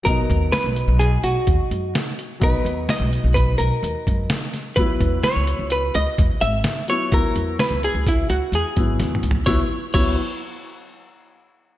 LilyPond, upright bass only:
\new Staff \with { instrumentName = "Upright bass" } { \clef bass \time 5/4 \key cis \dorian \tempo 4 = 128 b,,16 r16 dis,8 r16 b,,8 b,,8. b,,16 r16 dis,16 r16 fis,8 r4 | b,,16 r16 dis,8 r16 b,,8 b,,8. b,,16 r16 dis,16 r16 fis,8 r4 | cis,16 r16 e,8 r16 cis,8 cis,8. cis,16 r16 e,16 r16 gis,,8 r4 | cis,16 r16 e,8 r16 cis,8 cis,8. cis,16 r16 e,16 r16 gis,,8 dis,8 cis,8 |
cis,16 r8. cis,8 r2. r8 | }